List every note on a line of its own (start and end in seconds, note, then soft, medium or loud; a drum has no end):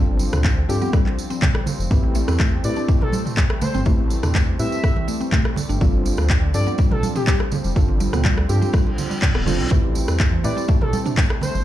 0.00 0.26 G1 loud
0.00 1.87 F3 medium
0.00 1.87 G3 medium
0.00 0.66 C4 medium
0.00 5.77 C4 medium
0.00 0.66 D4 medium
0.00 0.66 F4 medium
0.00 0.66 A4 loud
0.19 tambourine medium
0.19 muted conga soft
0.19 high conga medium
0.33 0.63 D2 medium
0.33 cross-stick loud
0.33 mid tom medium
0.33 tambourine medium
0.44 kick loud
0.44 clap loud
0.44 tambourine soft
0.44 muted conga soft
0.44 high conga medium
0.57 0.68 D3 medium
0.69 0.77 G2 medium
0.69 0.76 G3 medium
0.69 1.88 C4 medium
0.69 1.88 D4 medium
0.69 1.88 F4 medium
0.69 0.77 G4 medium
0.69 1.88 A4 loud
0.69 tambourine medium
0.81 0.93 B3 medium
0.81 0.89 G4 medium
0.81 tambourine soft
0.81 muted conga soft
0.81 high conga medium
0.93 1.05 G3 loud
0.93 kick loud
0.93 cross-stick medium
0.93 tambourine soft
1.06 clap soft
1.06 muted conga medium
1.19 tambourine medium
1.30 1.37 C4 medium
1.30 tambourine medium
1.30 muted conga soft
1.42 1.54 G3 medium
1.42 kick loud
1.42 clap loud
1.42 mid tom medium
1.42 tambourine soft
1.42 low conga loud
1.55 cross-stick loud
1.66 tambourine loud
1.66 muted conga medium
1.66 high conga medium
1.66 low conga loud
1.79 1.87 F1 medium
1.79 tambourine medium
1.91 2.21 A1 loud
1.91 11.64 G3 medium
1.91 5.77 A3 medium
1.91 2.61 C4 medium
1.91 2.61 E4 medium
1.91 2.61 G4 medium
1.91 2.61 B4 loud
1.91 kick loud
1.91 tambourine soft
1.91 muted conga medium
1.91 low conga loud
2.03 2.14 E3 medium
2.15 2.22 A3 medium
2.15 tambourine medium
2.15 muted conga soft
2.28 2.58 E2 medium
2.28 2.39 C4 medium
2.28 cross-stick medium
2.28 tambourine medium
2.39 2.51 A3 loud
2.39 kick loud
2.39 clap loud
2.39 tambourine soft
2.39 muted conga soft
2.39 high conga medium
2.64 2.73 A2 medium
2.64 3.83 C4 medium
2.64 3.83 E4 medium
2.64 3.83 G4 medium
2.64 3.83 B4 loud
2.64 2.82 D5 medium
2.64 tambourine loud
2.76 2.83 D4 medium
2.76 tambourine medium
2.76 muted conga soft
2.88 3.00 A3 medium
2.88 kick loud
2.88 tambourine soft
3.01 3.18 A4 medium
3.01 mid tom medium
3.01 muted conga soft
3.13 tambourine loud
3.13 high conga loud
3.26 mid tom medium
3.26 tambourine medium
3.26 muted conga soft
3.37 kick loud
3.37 clap loud
3.37 tambourine soft
3.37 high conga loud
3.50 3.60 E3 medium
3.50 cross-stick loud
3.61 3.68 A3 medium
3.61 3.79 C5 medium
3.61 tambourine medium
3.61 muted conga soft
3.61 low conga loud
3.74 3.82 G1 medium
3.74 3.85 C4 medium
3.74 tambourine medium
3.74 high conga medium
3.86 4.16 A1 medium
3.86 3.97 A3 loud
3.86 4.56 C4 medium
3.86 4.56 E4 medium
3.86 4.56 G4 medium
3.86 4.56 B4 loud
3.86 kick loud
3.86 tambourine soft
3.86 muted conga medium
3.86 low conga medium
4.10 tambourine medium
4.10 muted conga soft
4.10 high conga medium
4.23 4.53 E2 medium
4.23 4.29 D4 medium
4.23 cross-stick medium
4.23 mid tom medium
4.23 tambourine medium
4.35 4.47 A3 medium
4.35 kick loud
4.35 clap loud
4.35 tambourine soft
4.35 muted conga soft
4.35 high conga medium
4.59 4.68 A2 medium
4.59 5.78 C4 medium
4.59 5.78 E4 medium
4.59 5.78 G4 medium
4.59 5.78 B4 loud
4.59 5.08 E5 loud
4.59 tambourine medium
4.72 tambourine medium
4.72 muted conga soft
4.72 high conga medium
4.84 kick loud
4.84 cross-stick medium
4.84 tambourine soft
4.96 5.07 E3 medium
4.96 muted conga medium
5.08 5.15 A3 medium
5.08 tambourine loud
5.21 5.32 C4 medium
5.21 tambourine soft
5.21 muted conga soft
5.32 5.44 A3 loud
5.32 kick loud
5.32 clap loud
5.32 mid tom medium
5.32 tambourine soft
5.32 low conga loud
5.45 cross-stick medium
5.56 tambourine medium
5.56 muted conga soft
5.56 high conga medium
5.56 low conga loud
5.69 5.77 G1 medium
5.69 5.76 D4 medium
5.69 tambourine medium
5.81 6.11 G1 loud
5.81 9.68 F3 medium
5.81 5.93 G3 medium
5.81 6.51 C4 loud
5.81 11.64 C4 medium
5.81 6.51 D4 medium
5.81 6.51 F4 medium
5.81 6.51 A4 loud
5.81 kick loud
5.81 tambourine soft
5.81 muted conga medium
5.81 low conga medium
6.05 tambourine medium
6.05 muted conga soft
6.17 6.48 D2 medium
6.17 cross-stick medium
6.17 tambourine soft
6.29 kick loud
6.29 clap loud
6.29 tambourine soft
6.29 muted conga medium
6.29 high conga medium
6.42 6.53 D3 medium
6.54 6.63 G2 medium
6.54 6.61 G3 medium
6.54 7.73 C4 medium
6.54 7.73 D4 medium
6.54 7.73 F4 medium
6.54 7.73 A4 loud
6.54 6.72 D5 loud
6.54 tambourine medium
6.67 6.78 B3 medium
6.67 tambourine soft
6.67 muted conga soft
6.78 6.90 G3 loud
6.78 kick loud
6.78 tambourine soft
6.91 7.08 A4 medium
6.91 mid tom loud
6.91 muted conga medium
7.03 tambourine medium
7.03 high conga loud
7.16 7.22 C4 medium
7.16 7.23 G4 medium
7.16 mid tom medium
7.16 tambourine medium
7.16 muted conga soft
7.27 7.39 G3 medium
7.27 7.36 G4 medium
7.27 kick loud
7.27 clap loud
7.27 tambourine soft
7.27 high conga loud
7.40 cross-stick medium
7.51 tambourine medium
7.51 muted conga medium
7.51 low conga loud
7.64 7.72 F1 medium
7.64 tambourine soft
7.64 high conga medium
7.76 8.06 G1 loud
7.76 8.47 C4 medium
7.76 8.47 D4 medium
7.76 8.47 F4 medium
7.76 8.47 A4 loud
7.76 kick loud
7.76 tambourine soft
7.76 muted conga medium
7.76 low conga medium
7.89 7.99 D3 medium
8.00 8.07 G3 medium
8.00 tambourine medium
8.00 muted conga soft
8.00 high conga medium
8.13 8.43 D2 medium
8.13 8.24 B3 medium
8.13 cross-stick medium
8.13 mid tom medium
8.13 tambourine soft
8.24 8.36 G3 loud
8.24 kick loud
8.24 clap loud
8.24 tambourine soft
8.24 muted conga medium
8.24 high conga medium
8.38 cross-stick medium
8.49 8.58 G2 medium
8.49 9.44 C4 medium
8.49 9.44 D4 medium
8.49 9.44 F4 medium
8.49 8.57 G4 medium
8.49 9.44 A4 loud
8.49 tambourine medium
8.62 8.68 C4 medium
8.62 8.70 G4 medium
8.62 tambourine medium
8.62 muted conga soft
8.62 high conga medium
8.73 8.86 G3 medium
8.73 kick loud
8.73 cross-stick medium
8.73 tambourine soft
8.73 reverse cymbal medium
8.87 muted conga medium
8.98 tambourine medium
8.98 low conga medium
9.10 9.17 G3 medium
9.10 tambourine medium
9.10 muted conga soft
9.22 kick loud
9.22 clap loud
9.22 mid tom loud
9.22 low conga loud
9.35 9.48 D1 loud
9.35 9.45 B3 medium
9.35 cross-stick medium
9.46 9.61 F1 medium
9.46 9.68 C4 medium
9.46 9.68 D4 medium
9.46 9.54 F4 medium
9.46 9.68 F4 medium
9.46 9.68 A4 medium
9.46 tambourine medium
9.46 muted conga medium
9.46 high conga medium
9.46 low conga loud
9.59 9.67 C2 medium
9.59 tambourine soft
9.70 10.01 A1 medium
9.70 11.64 A3 medium
9.70 9.83 A3 medium
9.70 10.42 C4 loud
9.70 10.42 E4 medium
9.70 10.42 G4 medium
9.70 10.42 B4 loud
9.70 kick loud
9.70 tambourine soft
9.70 muted conga medium
9.70 low conga loud
9.95 tambourine medium
9.95 muted conga soft
10.08 10.38 E2 medium
10.08 cross-stick medium
10.08 tambourine medium
10.20 kick loud
10.20 clap loud
10.20 tambourine soft
10.20 muted conga medium
10.20 high conga medium
10.32 10.43 E3 medium
10.44 10.53 A2 medium
10.44 10.51 A3 medium
10.44 11.64 C4 medium
10.44 11.64 E4 medium
10.44 11.64 G4 medium
10.44 11.64 B4 loud
10.44 10.62 D5 loud
10.44 tambourine medium
10.57 10.68 C4 medium
10.57 tambourine soft
10.57 muted conga soft
10.68 10.80 A3 loud
10.68 kick loud
10.68 tambourine soft
10.81 10.98 A4 medium
10.81 mid tom medium
10.81 muted conga medium
10.93 tambourine medium
10.93 high conga loud
11.06 11.12 D4 medium
11.06 mid tom medium
11.06 tambourine medium
11.06 muted conga soft
11.17 11.30 A3 medium
11.17 kick loud
11.17 clap loud
11.17 tambourine soft
11.17 high conga loud
11.30 cross-stick loud
11.41 11.60 C5 loud
11.41 tambourine medium
11.41 muted conga medium
11.41 low conga loud
11.55 11.63 G1 medium
11.55 tambourine medium
11.55 high conga medium